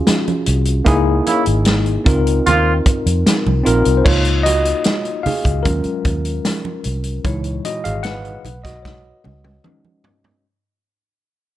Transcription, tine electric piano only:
Already playing: C#4 F4 F#4 G#4
0.84 A#3 D#4 E4 G#4
2.04 C4 D#4 F4 A#4
3.63 C4 D#4 F4 A#4
3.97 C5
4.05 A#3 D#4 F4 C#5
4.43 F#4 D#5
5.23 G#4 F5
5.63 F#3 G#3 C#4 F4 A#4
7.24 A#2 E3 G#3 D#4 E4 C#5
7.65 F#4 D#5
7.84 G#4 F5
8.03 B4 F#5
8.63 F#4 D#5
8.82 F#4 C#5
9.64 G#3 C#4 D#4

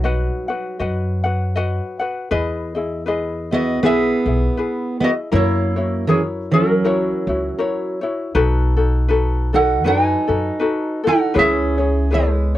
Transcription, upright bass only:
Already playing: B1
0.80 F#2
2.31 E2
3.81 B1
4.26 B1
5.33 F#2
6.83 C#2
7.27 C#2
8.35 B1
9.85 F#2
10.29 F#2
11.36 C#2

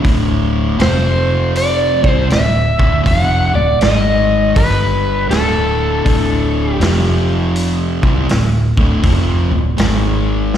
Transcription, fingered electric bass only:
0.05 D1
0.79 F1
2.04 C2
2.30 D1
2.80 D1
3.06 F1
3.54 D1
3.81 G#1
4.56 G1
5.30 D1
6.06 D1
6.80 F1
8.03 C2
8.28 D1
8.77 D1
9.04 F1
9.51 D1
9.79 G#1

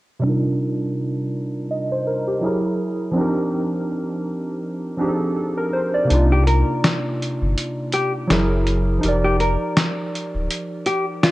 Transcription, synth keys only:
0.19 C3 G3 D4
0.25 D#4 F4 A#4
1.71 D#5
1.92 C5
2.07 A#4
2.28 G4
2.41 F#3 E4 G#4
2.46 A#4
3.12 F3 C4 D4
3.17 D#4 G4 A#4
4.97 F3 C4 D4 D#4
5.01 G4 G#4
5.08 A4
5.36 A4
5.57 A#4
5.73 C5
5.94 D5
6.05 C3 A#3
6.10 D4 D#4
6.14 F4
8.27 F#3 E4 G#4
8.32 A#4
8.98 F3 D#4
9.03 G4 A#4
9.08 D5

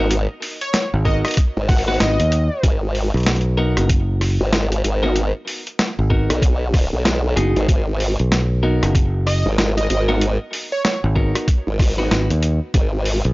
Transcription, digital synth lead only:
0.62 C#5
0.73 C#5
1.05 D#5
1.24 D#5
1.68 F#5
1.88 F#5
2.01 D#5
9.27 D#5
9.77 D#5
9.90 D#5
10.72 C#5
10.84 C#5

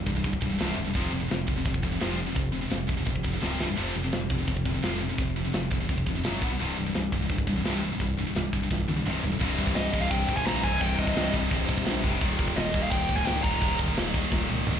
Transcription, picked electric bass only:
0.07 C1
0.24 C1
0.42 C1
0.60 C1
0.78 D#1
0.96 F1
1.13 F1
1.30 F1
1.48 F1
1.66 F1
1.83 F1
2.01 F1
2.36 F1
2.72 F1
2.89 F1
3.07 F1
3.25 F1
3.42 C#1
3.59 C1
3.78 F1
3.96 F1
4.13 F1
4.30 F1
4.48 F1
4.66 F1
4.83 F1
5.18 F1
5.54 F1
5.72 F1
5.89 F1
6.07 F1
6.25 F#1
6.42 B1
6.60 C1
6.78 C1
6.95 C1
7.12 C1
7.30 C1
7.47 C1
7.64 C1
8.00 C1
8.35 C1
8.53 C1
8.71 C1
8.88 C1
9.06 C1
9.23 D#1
9.41 C1
9.59 C1
9.76 C1
9.93 C1
10.11 C1
10.28 A#1
10.47 A#1
10.63 C1
10.81 C1
10.99 C1
11.16 C1
11.34 C1
11.51 C1
11.69 A#1
11.87 A#1
12.04 F1
12.21 D#1
12.39 D#1
12.57 D#1
12.74 D#1
12.92 D#1
13.09 C#1
13.28 C#1
13.44 D#1
13.62 D#1
13.80 D#1
13.98 D#1
14.14 D#1
14.32 D#1
14.50 C#1
14.67 C#1

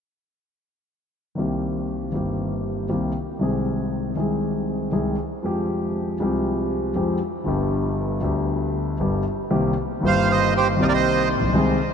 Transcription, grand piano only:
1.35 C2 C3 D#3 A#3 C4
1.39 G4
2.12 G1 G2 D#3 A#3 C4 G4
2.89 C2 C3 D#3 A#3 C4 G4
3.39 C2 C3 D#3 G#3 C4 G#4
4.16 C2 C3 D#3 G#3 C4 G#4
4.92 C2 C3 D#3 G#3 C4 G#4
5.42 F2 F3 G#3 C4 G4
6.18 C2 C3 F3 G#3 C4 G4
6.95 F2 F3 G#3 C4 G4
7.44 G1 G2 D3 G3 B3
7.48 G4
8.20 D2 D3 G3 B3 G4
9.00 G1 G2 D3 G3 B3 G4
9.50 C2 C3 D#3 A#3 C4 G4
10.01 G1 G2 D#3 A#3 C4
10.05 G4
10.76 C2 C3 D#3 A#3 C4
10.81 G4
11.36 A1
11.41 A#1
11.47 B1
11.54 C2 C3 D#3 G#3 C4 G#4

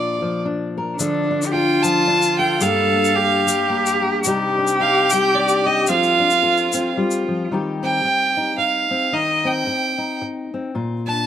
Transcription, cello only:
0.97 D4
1.46 G4
1.52 F4
2.62 A4
3.16 G4
4.24 G4
5.89 F4
6.96 F4

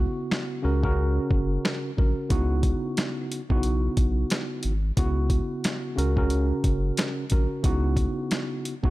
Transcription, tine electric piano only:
Already playing: C#3 B3 E4 F#4
0.62 C#3 C#4 F#4 A#4
0.82 C#3 C#4 F#4 A#4
1.96 C#3 C#4 F#4 A#4
2.29 C#3 B3 D#4 E4 F#4
3.49 C#3 B3 D#4 E4 F#4
4.96 C#3 B3 E4 F#4
5.96 C#3 C#4 F#4 A#4
6.16 C#3 C#4 F#4 A#4
7.30 C#3 C#4 F#4 A#4
7.63 C#3 B3 D#4 E4 F#4
8.83 C#3 B3 D#4 E4 F#4

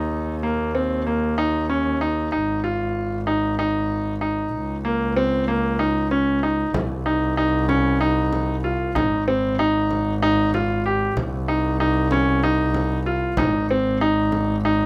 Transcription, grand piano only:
Already playing: D#4
0.43 A#3
0.75 C4
1.07 A#3
1.38 D#4
1.70 C#4
2.01 D#4
2.32 D#4
2.64 F4
3.27 D#4
3.59 D#4
4.21 D#4
4.85 A#3
5.16 C4
5.48 A#3
5.79 D#4
6.11 C#4
6.43 D#4
7.06 D#4
7.37 D#4
7.69 C#4
8.01 D#4
8.64 F4
8.95 D#4
9.28 C4
9.59 D#4
10.22 D#4
10.54 F4
10.86 G4
11.48 D#4
11.80 D#4
12.12 C#4
12.43 D#4
13.06 F4
13.38 D#4
13.71 C4
14.01 D#4
14.65 D#4

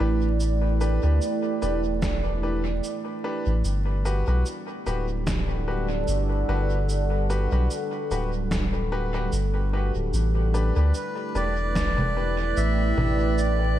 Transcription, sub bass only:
0.00 A1
1.03 D2
1.62 E1
3.46 A1
3.65 G1
4.27 B1
4.86 D1
6.08 G1
6.48 G1
7.52 B1
8.11 D1
9.32 G1
9.95 D1
10.13 A1
10.76 D2
11.35 E1
12.57 A1
12.97 A1

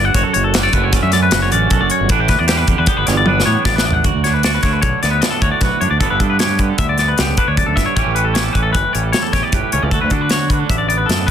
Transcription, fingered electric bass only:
0.15 F#1
0.35 F#1
0.74 F#1
1.03 F#2
1.32 F#1
1.51 A1
1.71 B1
1.82 F#1
2.01 G1
2.10 A1
2.29 D2
2.40 E2
2.68 E2
2.79 E2
2.98 G1
3.08 G1
3.46 A2
3.65 A1
4.05 D2
4.14 D2
4.64 D2
4.83 B1
5.03 D2
5.42 D2
5.61 B1
5.81 F#2
5.91 D2
6.01 G1
6.10 G1
6.20 G2
6.79 D2
7.19 C#2
7.48 D2
7.67 D2
7.77 G1
7.97 A1
8.06 A1
8.55 A1
8.75 G1
8.95 A1
9.34 A1
9.53 G1
9.73 C#2
9.83 C#2
9.92 D2
10.03 D2
10.12 D3
10.70 A1
11.09 F#2

